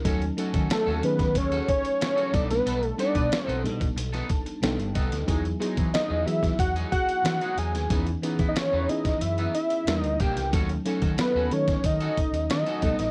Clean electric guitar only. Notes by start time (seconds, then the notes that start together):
0.06 C#4 F#4 A4
0.22 muted clean electric guitar stroke
0.39 C#4 F#4 A4
0.54 C#4 F#4 A4
0.87 C#4 F#4 A4
1.03 muted clean electric guitar stroke
1.20 muted clean electric guitar stroke
1.36 muted clean electric guitar stroke
1.52 C#4 F#4 A4
1.68 muted clean electric guitar stroke
1.84 muted clean electric guitar stroke
2.01 muted clean electric guitar stroke
2.16 C#4 F#4 A4
2.33 B3 D#4 A4
2.49 muted clean electric guitar stroke
2.66 B3 D#4 A4
2.82 muted clean electric guitar stroke
2.98 B3 D#4 A4
3.15 B3 D#4 B4
3.31 muted clean electric guitar stroke
3.47 B3 D#4 A4
3.64 muted clean electric guitar stroke
3.80 muted clean electric guitar stroke
3.96 muted clean electric guitar stroke
4.13 B3 D#4 A4
4.30 muted clean electric guitar stroke
4.46 muted clean electric guitar stroke
4.79 muted clean electric guitar stroke
4.95 B3 D#4 A4
5.11 muted clean electric guitar stroke
5.28 F#3 G#3 D#4
5.45 muted clean electric guitar stroke
5.60 F#3 G#3 D#4
5.77 F#3 G#3 D#4
5.94 muted clean electric guitar stroke
6.10 F#3 G#3 D#4
6.27 muted clean electric guitar stroke
6.43 muted clean electric guitar stroke
6.60 muted clean electric guitar stroke
6.76 F#3 G#3 D#4
6.93 muted clean electric guitar stroke
7.09 muted clean electric guitar stroke
7.26 muted clean electric guitar stroke
7.42 F#3 G#3 D#4
7.58 F#3 G#3 D#4
7.74 muted clean electric guitar stroke
7.91 E3 B3 D#4
8.07 muted clean electric guitar stroke
8.24 E3 B3 D#4
8.39 E3 B3 E4
8.56 muted clean electric guitar stroke
8.73 E3 B3 D#4
8.89 muted clean electric guitar stroke
9.06 muted clean electric guitar stroke
9.22 muted clean electric guitar stroke
9.39 E3 B3 D#4
9.55 muted clean electric guitar stroke
9.72 muted clean electric guitar stroke
10.04 muted clean electric guitar stroke
10.21 A#3 D4 G4
10.38 muted clean electric guitar stroke
10.53 C#4 F#4 A4
10.70 muted clean electric guitar stroke
10.86 C#4 F#4 A4
11.02 C#4 F#4 A4
11.19 muted clean electric guitar stroke
11.36 C#4 F#4 A4
11.52 muted clean electric guitar stroke
11.69 muted clean electric guitar stroke
11.85 muted clean electric guitar stroke
12.01 C#4 F#4 A4
12.17 muted clean electric guitar stroke
12.34 muted clean electric guitar stroke
12.50 muted clean electric guitar stroke
12.67 C#4 F#4 A4
12.83 B3 D#4 A4
13.00 muted clean electric guitar stroke